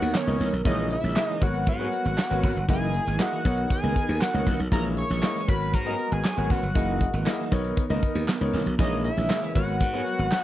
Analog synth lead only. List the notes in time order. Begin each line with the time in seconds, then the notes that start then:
Already playing: F#5
0.16 C#5
0.67 D#5
0.92 E5
1.26 D#5
1.43 F#5
1.69 F#5
2.70 G#5
3.22 F#5
3.72 G#5
4.22 F#5
4.73 A#5
4.98 C#6
5.49 B5
5.75 A#5
6.13 G#5
6.51 F#5
8.80 D#5
9.05 E5
9.55 F#5